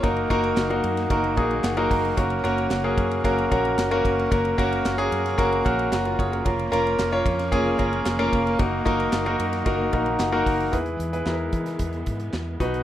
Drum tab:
RD |xxxxxxxxxxxxxxxx|xxxxx-xxxxxxxxxx|xxxxxxxxxxxxxxxx|xxxxx-xxx-xxxxxx|
HH |--------------o-|p---------------|----------------|----------------|
CP |----x-------x---|----x-------x---|----x-------x---|----x-------x---|
SD |----o--o----o---|----o-------o---|----o--o----o---|----o--o----o---|
BD |o-o-----o-o---o-|o-----o-o-o---o-|o-o-----o-o---o-|o-----o-o-o---o-|

RD |x-xxxxxxx-xxx-xx|----------------|
HH |--------------o-|xxxx--xxxxxx--xx|
CP |----x-------x---|----x-------x---|
SD |----o--o----o---|----o--o----o---|
BD |o-o-----o-o---o-|o-----o-o-o---o-|